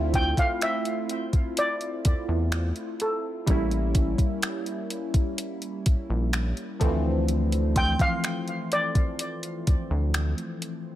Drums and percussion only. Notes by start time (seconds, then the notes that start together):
0.14 kick, closed hi-hat
0.37 kick, closed hi-hat
0.61 finger snap, closed hi-hat
0.85 closed hi-hat
1.09 closed hi-hat
1.33 kick, closed hi-hat
1.57 closed hi-hat
1.81 closed hi-hat
2.05 kick, closed hi-hat
2.52 finger snap, closed hi-hat
2.76 closed hi-hat
3.00 closed hi-hat
3.47 kick, closed hi-hat
3.71 closed hi-hat
3.95 kick, closed hi-hat
4.18 kick, closed hi-hat
4.42 finger snap, closed hi-hat
4.66 closed hi-hat
4.90 closed hi-hat
5.14 kick, closed hi-hat
5.38 closed hi-hat
5.62 closed hi-hat
5.86 kick, closed hi-hat
6.33 finger snap, closed hi-hat
6.57 closed hi-hat
6.81 kick, closed hi-hat
7.28 closed hi-hat
7.52 closed hi-hat
7.76 kick, closed hi-hat
7.99 kick, closed hi-hat
8.24 finger snap, closed hi-hat
8.48 closed hi-hat
8.72 closed hi-hat
8.95 kick, closed hi-hat
9.19 closed hi-hat
9.43 closed hi-hat
9.67 kick, closed hi-hat
10.14 finger snap, closed hi-hat
10.38 closed hi-hat
10.62 closed hi-hat